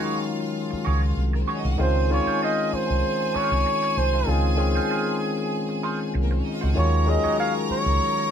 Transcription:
0.00 1.78 D#3 medium
0.00 1.81 F#3 medium
0.00 1.79 G#3 medium
0.00 1.80 C#4 medium
0.00 0.60 D#4 medium
0.00 1.23 F4 medium
0.00 0.22 F#4 medium
0.00 0.22 G#4 medium
0.00 0.27 G#4 medium
0.00 1.81 G#4 medium
0.00 0.23 C#5 medium
0.00 1.23 F5 medium
0.23 muted clean electric guitar stroke soft
0.40 muted clean electric guitar stroke soft
0.71 muted clean electric guitar stroke soft
0.71 muted fingered electric bass stroke soft
0.85 1.12 C#2 medium
0.85 1.03 F#4 medium
0.85 1.02 G#4 medium
0.85 1.01 C#5 medium
1.02 muted clean electric guitar stroke soft
1.17 1.42 C2 medium
1.33 1.41 A#3 medium
1.33 1.41 A#4 medium
1.33 muted clean electric guitar stroke soft
1.40 1.48 C4 medium
1.40 1.48 C5 medium
1.47 1.56 C#4 medium
1.47 1.66 F#4 medium
1.47 1.65 G#4 medium
1.47 1.56 C#5 medium
1.47 1.64 C#5 medium
1.56 1.64 D#4 medium
1.56 1.65 D#5 medium
1.63 1.77 C2 medium
1.63 1.71 F4 medium
1.63 1.71 F5 medium
1.63 muted clean electric guitar stroke soft
1.71 1.79 F#4 medium
1.71 1.79 F#5 medium
1.78 2.18 C#2 medium
1.78 2.04 D#3 medium
1.78 2.04 G#3 medium
1.78 2.04 C4 medium
1.78 2.04 C#4 medium
1.78 1.97 D#4 medium
1.78 1.97 F4 medium
1.78 2.05 F4 medium
1.78 6.12 G#4 medium
1.78 1.98 C5 medium
1.78 2.09 C5 medium
1.78 6.11 G#5 medium
2.10 3.08 D#3 medium
2.10 3.08 G#3 medium
2.10 3.09 C#4 medium
2.10 3.08 D#4 medium
2.10 3.09 F4 medium
2.10 2.40 C#5 medium
2.10 muted clean electric guitar stroke soft
2.27 2.40 D#4 soft
2.27 2.40 F4 soft
2.27 2.39 C5 medium
2.27 muted fingered electric bass stroke soft
2.42 2.70 D#4 medium
2.42 2.71 F4 medium
2.42 2.71 C5 medium
2.42 2.76 D#5 medium
2.73 3.38 C5 medium
2.73 muted fingered electric bass stroke soft
2.73 muted clean electric guitar stroke soft
2.90 3.01 C2 medium
2.90 muted clean electric guitar stroke soft
3.21 muted clean electric guitar stroke soft
3.35 3.55 D#4 medium
3.35 3.52 F4 medium
3.35 3.51 C5 medium
3.35 3.99 C#5 medium
3.35 muted fingered electric bass stroke soft
3.52 3.63 C2 medium
3.66 muted clean electric guitar stroke soft
3.83 muted clean electric guitar stroke soft
3.97 4.22 C2 medium
3.97 4.30 C5 medium
4.13 4.26 D#4 soft
4.13 4.27 F4 medium
4.13 4.28 C5 medium
4.26 4.78 C#2 loud
4.26 4.52 D#3 medium
4.26 4.52 G#3 medium
4.26 4.52 C4 medium
4.26 4.53 C#4 medium
4.26 4.45 D#4 medium
4.26 4.46 F4 medium
4.26 4.53 F4 medium
4.26 6.14 G#4 medium
4.26 4.46 C5 medium
4.56 5.55 D#3 medium
4.56 5.55 G#3 medium
4.56 5.56 C4 medium
4.56 5.56 C#4 medium
4.56 5.56 G#4 medium
4.56 muted clean electric guitar stroke soft
4.75 4.88 D#4 soft
4.75 4.88 F4 soft
4.75 4.88 C5 medium
4.89 5.18 D#4 medium
4.89 5.19 F4 medium
4.89 5.19 C5 medium
5.23 muted clean electric guitar stroke soft
5.38 muted clean electric guitar stroke soft
5.69 muted clean electric guitar stroke soft
5.83 6.01 D#4 medium
5.83 6.00 F4 medium
5.83 5.99 C5 medium
6.00 muted clean electric guitar stroke soft
6.14 6.40 C2 medium
6.14 muted clean electric guitar stroke soft
6.22 6.31 A#3 medium
6.22 6.31 A#4 medium
6.31 6.38 C4 medium
6.31 6.38 C5 medium
6.31 muted clean electric guitar stroke soft
6.39 6.46 C#4 medium
6.39 6.46 C#5 medium
6.44 6.53 D#4 medium
6.44 6.53 D#5 medium
6.53 6.61 F4 medium
6.53 6.61 F5 medium
6.61 6.74 C#2 medium
6.61 6.75 D#4 medium
6.61 6.76 F4 medium
6.61 6.69 F#4 medium
6.61 6.77 C5 medium
6.61 6.69 F#5 medium
6.69 6.76 G#4 medium
6.69 6.76 G#5 medium
6.74 7.16 D#2 loud
6.74 7.00 D#3 medium
6.74 7.00 F#3 medium
6.74 7.01 G#3 medium
6.74 7.01 C#4 medium
6.74 7.01 F4 medium
6.74 6.94 F#4 medium
6.74 6.94 G#4 medium
6.74 8.31 A#4 medium
6.74 6.95 C#5 medium
6.74 8.31 A#5 medium
6.79 7.11 C#5 medium
7.06 8.04 D#3 medium
7.06 8.04 F#3 medium
7.06 8.05 G#3 medium
7.06 8.05 C#4 medium
7.06 8.05 G#4 medium
7.06 7.39 D#5 medium
7.06 muted clean electric guitar stroke soft
7.24 7.37 F#4 soft
7.24 7.36 G#4 soft
7.24 7.36 C#5 medium
7.24 muted fingered electric bass stroke soft
7.38 7.67 F#4 medium
7.38 7.68 G#4 medium
7.38 7.68 C#5 medium
7.38 7.53 F5 medium
7.70 8.31 C#5 loud
7.70 muted fingered electric bass stroke soft
7.70 muted clean electric guitar stroke soft
7.86 7.98 C#2 medium
7.86 muted clean electric guitar stroke soft
8.18 muted clean electric guitar stroke soft

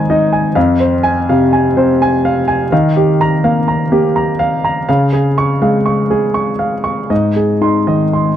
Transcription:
0.00 0.51 G#2 medium
0.00 0.58 D#3 soft
0.00 0.10 D#4 soft
0.00 0.58 C5 soft
0.00 0.10 D#5 medium
0.00 0.33 G#5 medium
0.10 0.47 D#4 soft
0.10 0.47 D#5 soft
0.33 0.56 G#5 soft
0.55 2.67 F2 medium
0.55 0.94 F5 medium
0.80 1.18 C5 soft
1.03 1.42 G#5 medium
1.29 1.67 C3 soft
1.29 1.67 F5 soft
1.53 1.91 G#5 soft
1.77 2.15 C3 soft
1.77 2.15 C5 soft
2.02 2.39 G#5 medium
2.25 2.62 F5 medium
2.48 2.71 G#5 medium
2.72 4.84 D#3 medium
2.72 3.10 F5 medium
2.97 3.34 G4 soft
3.21 3.58 A#5 medium
3.44 3.82 A#3 soft
3.44 3.82 F5 soft
3.68 4.06 A#5 soft
3.92 4.30 A#3 soft
3.92 4.30 G4 soft
4.16 4.54 A#5 soft
4.39 4.78 F5 medium
4.64 4.88 A#5 soft
4.89 7.07 C#3 medium
4.89 5.27 F5 medium
5.13 5.51 G#4 soft
5.38 5.76 C#6 medium
5.62 6.00 G#3 soft
5.62 6.00 F5 soft
5.86 6.25 C#6 soft
6.11 6.50 G#3 soft
6.11 6.50 G#4 soft
6.34 6.74 C#6 soft
6.59 7.00 F5 soft
6.84 7.10 C#6 soft
7.10 8.37 G#2 soft
7.10 7.52 D#5 soft
7.36 7.78 G#4 soft
7.61 8.03 D#4 soft
7.61 8.03 C6 soft
7.87 8.29 D#3 soft
7.87 8.28 D#5 soft
8.13 8.37 C6 soft

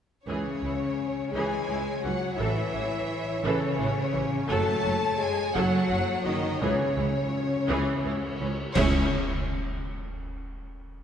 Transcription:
0.25 0.41 C#2 medium
0.25 0.35 C#2 medium
0.25 1.31 C#3 medium
0.25 0.61 E3 soft
0.25 1.30 C#4 medium
0.25 0.61 G#4 medium
0.25 1.30 C#5 medium
0.25 4.47 C#5 soft
0.62 0.70 C#2 soft
0.62 0.77 C#2 soft
0.62 0.71 E3 soft
0.62 0.71 E4 soft
1.31 1.41 C#2 medium
1.31 1.49 C#2 medium
1.31 1.67 E3 medium
1.31 2.04 G#3 medium
1.31 2.03 G#4 medium
1.31 1.67 G#4 medium
1.31 2.05 G#5 medium
1.69 1.77 C#2 soft
1.69 1.84 C#2 soft
1.69 1.78 E3 soft
1.69 1.78 E4 soft
2.02 2.12 C#2 soft
2.02 2.19 C#2 soft
2.02 2.12 E3 soft
2.02 2.39 F#3 medium
2.02 2.12 C#4 soft
2.02 2.38 F#4 medium
2.02 2.38 F#5 medium
2.36 2.47 A1 medium
2.36 2.54 A1 medium
2.36 2.71 E3 medium
2.36 3.41 E3 medium
2.36 3.42 E4 medium
2.36 2.71 A4 medium
2.36 3.41 E5 medium
2.74 2.82 A1 soft
2.74 2.88 A1 soft
2.74 2.83 E3 soft
2.74 2.82 E4 soft
3.40 3.51 A1 medium
3.40 3.57 A1 medium
3.40 4.48 C#3 medium
3.40 3.77 E3 medium
3.40 4.48 C#4 medium
3.40 3.77 A4 medium
3.40 4.50 C#5 medium
3.78 3.86 A1 medium
3.78 3.93 A1 soft
3.78 3.87 E3 medium
3.78 3.87 E4 medium
4.13 4.28 A1 medium
4.13 4.22 A1 soft
4.13 4.21 E3 medium
4.13 4.22 C#4 soft
4.48 4.64 F#1 medium
4.48 4.58 F#1 medium
4.48 4.82 F#3 medium
4.48 5.19 A3 medium
4.48 5.18 A4 loud
4.48 4.82 A4 medium
4.48 8.52 C#5 medium
4.48 5.19 A5 medium
4.85 4.99 F#1 medium
4.85 4.93 F#1 medium
4.85 4.93 F#3 soft
4.85 4.93 F#4 soft
5.17 5.55 G#3 medium
5.17 5.53 G#4 medium
5.17 5.55 G#5 medium
5.54 5.68 F#1 medium
5.54 5.64 F#1 medium
5.54 5.88 F#3 medium
5.54 6.25 F#3 medium
5.54 6.25 F#4 loud
5.54 5.88 A4 medium
5.54 6.26 F#5 medium
5.90 6.05 F#1 medium
5.90 5.99 F#1 medium
5.90 5.99 F#3 medium
5.90 5.99 F#4 medium
6.25 6.40 F#1 medium
6.25 6.35 F#1 medium
6.25 6.62 D#3 medium
6.25 6.33 F#3 medium
6.25 6.33 C#4 soft
6.25 6.62 D#4 medium
6.25 6.61 D#5 medium
6.61 6.76 C#2 medium
6.61 6.70 C#2 medium
6.61 7.65 C#3 medium
6.61 8.37 C#3 medium
6.61 6.95 E3 medium
6.61 8.40 C#4 medium
6.61 6.95 G#4 medium
6.61 8.40 C#5 medium
6.97 7.05 C#2 soft
6.97 7.12 C#2 soft
6.97 7.05 E3 soft
6.97 7.05 E4 soft
7.68 7.77 C#2 medium
7.68 7.83 C#2 medium
7.68 8.02 E3 medium
7.68 8.02 G#4 medium
8.04 8.18 C#2 soft
8.04 8.13 C#2 soft
8.04 8.12 E3 soft
8.04 8.13 E4 medium
8.40 8.48 C#2 medium
8.40 8.55 C#2 soft
8.40 8.49 E3 soft
8.40 8.49 C#4 medium
8.75 9.07 C#2 medium
8.75 9.15 C#2 medium
8.75 9.08 C#3 medium
8.75 9.15 C#4 medium
8.75 9.07 C#4 medium
8.75 9.15 E4 medium
8.75 9.15 G#4 medium
8.75 9.14 C#5 medium
8.75 9.15 C#5 medium
8.75 concert bass drum medium
8.75 crash medium

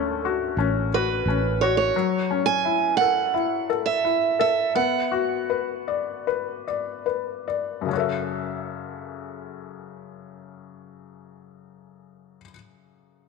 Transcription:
0.00 0.52 D2 medium
0.00 1.90 D3 medium
0.00 0.88 A3 soft
0.00 0.57 C#4 soft
0.00 0.21 A4 medium
0.25 0.93 F#4 soft
0.57 1.22 A1 medium
0.57 1.27 C#4 soft
0.94 1.61 F#4 soft
0.94 1.64 B4 medium
1.26 1.90 A1 medium
1.26 1.94 C#4 soft
1.61 1.94 F#4 soft
1.61 1.76 C#5 medium
1.77 2.45 C#5 medium
1.96 4.73 F#3 medium
2.31 3.65 C#4 soft
2.46 2.96 G#5 medium
2.65 3.32 E4 soft
2.97 3.81 F#5 medium
3.01 3.68 A4 soft
3.34 4.03 E4 soft
3.70 4.38 A4 soft
3.86 4.39 E5 medium
4.05 4.74 E4 soft
4.39 4.75 A4 soft
4.39 4.75 E5 medium
4.75 7.86 B3 soft
4.75 7.03 F#5 medium
5.12 6.62 F#4 soft
5.50 6.26 B4 soft
5.88 6.66 D5 soft
6.27 7.04 B4 soft
6.68 7.46 D5 soft
7.06 7.87 B4 soft
7.48 7.89 D5 soft
7.81 12.37 F#2 soft
7.81 12.41 C#3 soft
7.88 12.44 C#4 soft
7.93 12.49 F#4 soft
7.93 12.53 A4 soft
8.00 12.55 E5 soft

